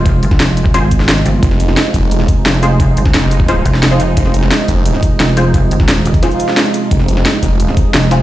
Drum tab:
HH |x-x-x-x-x-x-x-x-|x-x-x-x-x-x-x-x-|x-x-x-x-x-x-x-x-|x-x-x-x-x-x-x-x-|
SH |--x---x---x--xx-|--x---x---x--xx-|--x---x---x--xx-|--x---x---x--xx-|
SD |---oo---o--oo---|-o-oo----o--o-o-|---oo---o--oo---|-o-oo----o--o-o-|
BD |o--o---o--o-----|o-----o---o-----|o--o---o--o-----|o-----o---o-----|

HH |x-x-x-x-x-x-x-x-|x-x-x-x-x-x-x-x-|
SH |--x---xx-xx--xx-|--x---x---x--xx-|
SD |---oo---o--oo---|-o-oo----o--o-o-|
BD |o--o---o--------|o-----o---o-----|